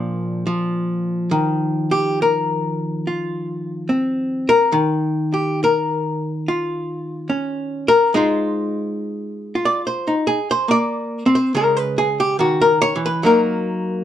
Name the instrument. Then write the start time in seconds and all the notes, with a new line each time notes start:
hollow-body jazz guitar
Already playing: A#2 F3 D4 F4 A#4
0.47 F3
1.31 D#3
1.91 G4
2.22 A#4
3.07 F4
3.89 C4
4.49 A#4
4.72 D#3
5.34 G4
5.64 A#4
6.48 F4
7.30 C#4
7.88 A#4
8.14 G#3 D#4 F4 C5
9.55 F4
9.65 D5
9.87 C5
10.07 D#4
10.27 G#4
10.51 C5
10.68 A#3 D5
11.26 C4
11.35 C5
11.55 C#3 G#3 A#4
11.77 B4
11.98 G#4
12.20 G4
12.39 D#3 F#4
12.61 A#4
12.82 C#5
12.96 E3
13.06 B4
13.23 F#3 A#3 D#4 A#4